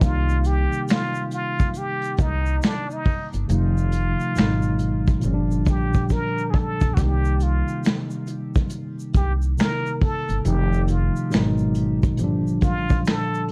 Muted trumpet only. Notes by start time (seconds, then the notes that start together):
0.03 F4
0.47 G4
0.90 F4
1.34 F4
1.78 G4
2.21 D#4
2.65 D4
2.93 D#4
3.52 F4
5.69 G4
6.12 A#4
6.50 G#4
6.56 A4
6.94 F#4
6.99 G4
7.43 F4
9.17 G4
9.60 A#4
10.02 A4
10.46 G4
10.90 F4
12.64 F4
13.08 A4